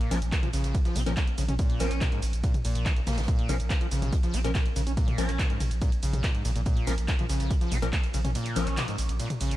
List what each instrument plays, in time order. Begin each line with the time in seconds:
Already playing: acid bass A#2
0.01 closed hi-hat, ride
0.11 sub bass A#1, synth stab F3 C#4 A#4, acid bass C#4, closed hi-hat, open hi-hat, ride, shaker
0.22 sub bass A#1, closed hi-hat, ride, shaker
0.32 acid bass A#3, kick, snare, clap, closed hi-hat, ride, shaker
0.43 acid bass F3, closed hi-hat, mid tom, ride
0.53 sub bass A#1, acid bass C#3, snare, closed hi-hat, open hi-hat, ride, shaker
0.64 sub bass A#1, snare, closed hi-hat, ride, shaker
0.74 acid bass A#2, kick, closed hi-hat, ride, shaker
0.85 acid bass F3, snare, closed hi-hat, ride, shaker
0.96 sub bass A#1, acid bass C#4, closed hi-hat, open hi-hat, mid tom, ride, shaker
1.06 sub bass A#1, acid bass A#2, synth stab F3 C#4 A#4, snare, closed hi-hat, ride, shaker
1.16 acid bass A#3, kick, snare, clap, closed hi-hat, ride, shaker
1.27 closed hi-hat, ride
1.37 sub bass A#1, acid bass C#3, closed hi-hat, open hi-hat, ride, shaker
1.49 sub bass A#1, acid bass C#4, closed hi-hat, mid tom, ride, shaker
1.59 acid bass A#2, kick, closed hi-hat, ride, shaker
1.70 closed hi-hat, ride
1.80 sub bass A#1, synth stab F3 C#4 A#4, acid bass C#4, closed hi-hat, open hi-hat, ride, shaker
1.91 sub bass A#1, clap, closed hi-hat, ride, shaker
2.01 acid bass A#2, kick, snare, clap, closed hi-hat, mid tom, ride, shaker
2.12 acid bass G#2, closed hi-hat, ride
2.22 sub bass A#1, closed hi-hat, open hi-hat, ride, shaker
2.33 sub bass A#1, closed hi-hat, ride, shaker
2.44 acid bass A#2, kick, closed hi-hat, ride, shaker
2.54 closed hi-hat, mid tom, ride, shaker
2.65 sub bass A#1, acid bass A#2, closed hi-hat, open hi-hat, ride, shaker
2.75 sub bass A#1, closed hi-hat, ride, shaker
2.85 acid bass F3, kick, snare, clap, closed hi-hat, ride, shaker
2.96 acid bass A#1, closed hi-hat, ride
3.07 sub bass A#1, acid bass A#3, snare, closed hi-hat, open hi-hat, mid tom, ride, shaker
3.12 snare, closed hi-hat
3.18 sub bass A#1, acid bass A#2, snare, closed hi-hat, ride, shaker
3.23 snare, closed hi-hat
3.28 acid bass A#2, kick, closed hi-hat, ride, shaker
3.39 closed hi-hat, ride
3.49 sub bass A#1, synth stab F3 C#4 A#4, acid bass C#4, closed hi-hat, open hi-hat, mid tom, ride, shaker
3.60 sub bass A#1, closed hi-hat, ride, shaker
3.69 acid bass A#3, kick, snare, clap, closed hi-hat, ride, shaker
3.81 acid bass F3, closed hi-hat, ride
3.91 sub bass A#1, acid bass C#3, snare, closed hi-hat, open hi-hat, ride, shaker
4.02 sub bass A#1, snare, closed hi-hat, mid tom, ride, shaker
4.13 acid bass A#2, kick, closed hi-hat, ride, shaker
4.23 acid bass F3, snare, closed hi-hat, ride, shaker
4.34 sub bass A#1, acid bass C#4, closed hi-hat, open hi-hat, ride, shaker
4.44 sub bass A#1, acid bass A#2, synth stab F3 C#4 A#4, snare, closed hi-hat, ride, shaker
4.54 acid bass A#3, kick, snare, clap, closed hi-hat, mid tom, ride, shaker
4.66 closed hi-hat, ride
4.76 sub bass A#1, acid bass C#3, closed hi-hat, open hi-hat, ride, shaker
4.87 sub bass A#1, acid bass C#4, closed hi-hat, ride, shaker
4.97 acid bass A#2, kick, closed hi-hat, ride, shaker
5.08 closed hi-hat, mid tom, ride
5.18 sub bass A#1, synth stab F3 C#4 A#4, acid bass C#4, closed hi-hat, open hi-hat, ride, shaker
5.29 sub bass A#1, clap, closed hi-hat, ride, shaker
5.39 acid bass A#2, kick, snare, clap, closed hi-hat, ride, shaker
5.50 acid bass G#2, closed hi-hat, ride
5.60 sub bass A#1, closed hi-hat, open hi-hat, mid tom, ride, shaker
5.71 sub bass A#1, closed hi-hat, ride, shaker
5.82 acid bass A#2, kick, closed hi-hat, ride, shaker
5.92 closed hi-hat, ride, shaker
6.03 sub bass A#1, acid bass C#3, closed hi-hat, open hi-hat, ride, shaker
6.13 sub bass A#1, closed hi-hat, mid tom, ride, shaker
6.23 acid bass A#2, kick, snare, clap, closed hi-hat, ride, shaker
6.34 acid bass G#2, closed hi-hat, ride
6.45 sub bass A#1, acid bass A#2, closed hi-hat, open hi-hat, ride, shaker
6.56 sub bass A#1, acid bass A#2, closed hi-hat, ride, shaker
6.65 acid bass A#2, kick, closed hi-hat, mid tom, ride, shaker
6.77 closed hi-hat, ride
6.87 sub bass A#1, synth stab F3 C#4 A#4, acid bass C#4, closed hi-hat, open hi-hat, ride, shaker
6.98 sub bass A#1, closed hi-hat, ride, shaker
7.08 acid bass A#3, kick, snare, clap, closed hi-hat, ride, shaker
7.19 acid bass F3, closed hi-hat, mid tom, ride
7.29 sub bass A#1, acid bass C#3, snare, closed hi-hat, open hi-hat, ride, shaker
7.40 sub bass A#1, snare, closed hi-hat, ride, shaker
7.50 acid bass A#2, kick, closed hi-hat, ride, shaker
7.61 acid bass F3, snare, closed hi-hat, ride, shaker
7.72 sub bass A#1, acid bass C#4, closed hi-hat, open hi-hat, mid tom, ride, shaker
7.82 sub bass A#1, acid bass A#2, synth stab F3 C#4 A#4, closed hi-hat, ride, shaker
7.93 acid bass A#3, kick, clap, closed hi-hat, ride, shaker
8.03 closed hi-hat, ride
8.14 sub bass A#1, acid bass C#3, open hi-hat, ride, shaker
8.25 sub bass A#1, acid bass C#4, closed hi-hat, mid tom, ride, shaker
8.35 acid bass A#2, closed hi-hat, ride, shaker
8.46 closed hi-hat, ride, shaker
8.56 sub bass A#1, synth stab F3 C#4 A#4, acid bass C#4, closed hi-hat, open hi-hat, ride, shaker
8.67 sub bass A#1, clap, closed hi-hat, ride, shaker
8.77 acid bass A#2, snare, clap, closed hi-hat, mid tom, ride, shaker
8.88 acid bass G#2, closed hi-hat, ride, shaker
8.98 sub bass A#1, closed hi-hat, open hi-hat, ride, shaker
9.09 sub bass A#1, closed hi-hat, ride, shaker
9.20 acid bass A#2, closed hi-hat, ride, shaker
9.30 closed hi-hat, mid tom, ride, shaker
9.41 sub bass A#1, acid bass C#3, closed hi-hat, open hi-hat, ride, shaker
9.51 sub bass A#1, closed hi-hat, ride, shaker